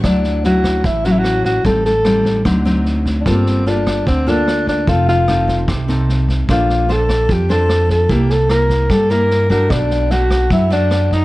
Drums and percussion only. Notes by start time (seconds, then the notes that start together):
0.04 kick, cross-stick, snare
0.24 snare
0.44 snare
0.64 kick, cross-stick, snare
0.84 kick, snare
1.04 snare
1.24 cross-stick, snare
1.45 kick, snare
1.64 kick, snare
1.85 snare
2.05 cross-stick, snare
2.25 kick, snare
2.45 kick, cross-stick, snare
2.65 snare
2.85 snare
3.06 kick, snare
3.26 kick, cross-stick, snare
3.46 snare
3.66 snare
3.87 kick, cross-stick, snare
4.07 kick, snare
4.27 snare
4.48 cross-stick, snare
4.67 kick, snare
4.87 kick, snare
5.08 snare
5.28 cross-stick, snare
5.48 kick, snare
5.68 kick, cross-stick, snare
5.89 snare
6.09 snare
6.29 kick, snare
6.49 kick, cross-stick, snare
6.69 snare
6.89 snare
7.09 kick, cross-stick, snare
7.29 kick, snare
7.49 snare
7.69 cross-stick, snare
7.89 kick, snare
8.09 kick, snare
8.30 snare
8.49 cross-stick, snare
8.70 kick, snare
8.90 kick, cross-stick, snare
9.10 snare
9.31 snare
9.50 kick, snare
9.70 kick, cross-stick, snare
9.90 snare
10.10 snare
10.30 kick, cross-stick, snare
10.50 kick, snare
10.71 snare
10.91 cross-stick, snare
11.11 kick, snare